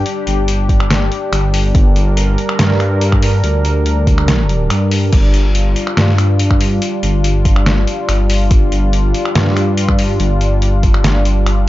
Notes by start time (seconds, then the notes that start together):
Already playing: G3 D4 G4
0.06 closed hi-hat
0.27 G1, closed hi-hat
0.48 closed hi-hat
0.69 kick, closed hi-hat
0.80 finger snap
0.90 snare, closed hi-hat
1.12 closed hi-hat
1.32 G1, finger snap, closed hi-hat
1.54 open hi-hat
1.75 G1 A#4, kick, closed hi-hat
1.96 closed hi-hat
2.17 closed hi-hat
2.38 closed hi-hat
2.49 finger snap
2.59 G2, snare, closed hi-hat
2.70 snare
2.80 finger snap, closed hi-hat
3.01 closed hi-hat
3.12 finger snap, kick
3.22 open hi-hat
3.44 D2, closed hi-hat
3.65 closed hi-hat
3.86 closed hi-hat
4.07 kick, closed hi-hat
4.18 finger snap
4.28 snare, closed hi-hat
4.49 closed hi-hat
4.70 G2, finger snap, closed hi-hat
4.91 open hi-hat
5.12 G1 F4, kick, closed hi-hat, crash
5.34 closed hi-hat
5.55 closed hi-hat
5.76 closed hi-hat
5.87 finger snap
5.97 G2, snare, closed hi-hat
6.08 snare
6.18 finger snap, closed hi-hat
6.39 closed hi-hat
6.51 finger snap, kick
6.61 open hi-hat
6.82 closed hi-hat
7.03 G1, closed hi-hat
7.24 closed hi-hat
7.45 kick, closed hi-hat
7.56 finger snap
7.66 snare, closed hi-hat
7.87 closed hi-hat
8.09 G1, finger snap, closed hi-hat
8.30 open hi-hat
8.51 G1, kick, closed hi-hat
8.72 closed hi-hat
8.93 closed hi-hat
9.14 closed hi-hat
9.25 finger snap
9.35 G2, snare, closed hi-hat
9.47 snare
9.57 finger snap, closed hi-hat
9.77 closed hi-hat
9.89 finger snap, kick
9.99 open hi-hat
10.20 G1, closed hi-hat
10.41 closed hi-hat
10.62 closed hi-hat
10.83 kick, closed hi-hat
10.94 finger snap
11.04 G1, snare, closed hi-hat
11.25 closed hi-hat
11.46 finger snap, closed hi-hat
11.63 F#1